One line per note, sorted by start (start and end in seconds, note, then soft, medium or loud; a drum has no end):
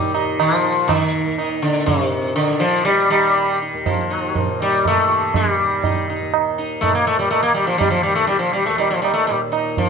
0.00 1.25 D#2 medium
0.00 1.86 A#2 medium
0.00 0.03 D#3 medium
0.00 0.64 D#3 medium
0.00 0.11 G3 medium
0.00 0.13 D#4 soft
0.14 0.38 D#4 soft
0.14 tabla na soft
0.40 0.91 F3 medium
0.40 tabla na medium
0.64 2.49 D#3 medium
0.64 0.87 D#4 soft
0.88 1.62 D#3 medium
0.88 tabla na medium
0.88 tabla ge medium
1.26 3.73 D#2 medium
1.38 1.62 D#4 soft
1.38 tabla na medium
1.62 1.86 D3 medium
1.62 tabla na soft
1.86 4.35 A#2 soft
1.86 2.35 C3 medium
1.86 tabla tin medium
1.86 tabla ge medium
2.36 2.62 D3 medium
2.36 tabla na medium
2.49 3.12 D#3 medium
2.60 2.84 F3 medium
2.85 3.09 G3 loud
2.85 tabla tin medium
3.10 4.97 D#3 medium
3.10 3.57 G3 medium
3.10 tabla na medium
3.37 tabla tin medium
3.62 3.85 D#4 soft
3.74 6.21 D#2 medium
3.86 4.62 F3 medium
3.86 tabla tin medium
3.86 tabla ge medium
4.10 4.34 D#4 soft
4.35 6.83 A#2 medium
4.35 4.59 D#4 soft
4.35 tabla tin medium
4.35 tabla ge medium
4.60 4.87 G3 medium
4.60 tabla na soft
4.85 5.36 A3 medium
4.85 tabla na medium
4.85 tabla ge medium
4.97 5.60 D#3 soft
5.10 tabla te soft
5.34 6.05 G3 medium
5.34 tabla tin medium
5.34 tabla ge medium
5.60 7.45 D#3 soft
5.84 6.07 D#4 soft
5.84 tabla tin medium
5.84 tabla ge medium
6.08 6.32 D#4 soft
6.08 tabla na soft
6.22 8.67 D#2 medium
6.34 tabla na medium
6.58 6.81 D#4 soft
6.81 9.30 A#2 medium
6.81 6.94 A3 medium
6.81 tabla na medium
6.81 tabla ge medium
6.95 7.06 A#3 medium
7.07 7.18 A3 medium
7.19 7.30 G3 medium
7.31 7.42 A3 medium
7.31 tabla na medium
7.43 8.07 D#3 medium
7.43 7.54 A#3 medium
7.54 7.67 G3 medium
7.67 7.78 F3 medium
7.78 7.90 G3 medium
7.78 tabla tin medium
7.78 tabla ge medium
7.90 8.03 F3 medium
8.03 8.15 G3 medium
8.07 9.89 D#3 medium
8.15 8.27 A3 medium
8.27 8.39 G3 medium
8.27 tabla te medium
8.39 8.53 F3 medium
8.53 8.66 G3 medium
8.53 tabla te medium
8.66 9.89 D#2 medium
8.66 8.78 A3 medium
8.78 8.90 G3 medium
8.78 tabla tin medium
8.90 9.02 F3 medium
9.02 9.13 G3 medium
9.02 tabla na medium
9.14 9.27 A3 medium
9.27 9.89 A#2 soft
9.27 9.39 G3 medium
9.27 tabla tin medium
9.52 9.75 D#4 soft
9.52 tabla na soft
9.77 9.89 F3 medium
9.77 tabla tin medium
9.77 tabla ge medium